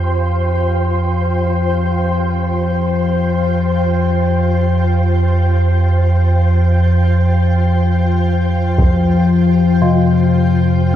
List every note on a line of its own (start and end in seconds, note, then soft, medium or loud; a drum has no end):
0.00 10.96 F2 medium
0.00 10.96 F3 medium
0.00 1.47 D#4 soft
0.00 10.96 F4 medium
0.00 10.96 C5 medium
0.00 10.96 G5 medium
8.78 taiko medium
9.82 10.96 C3 medium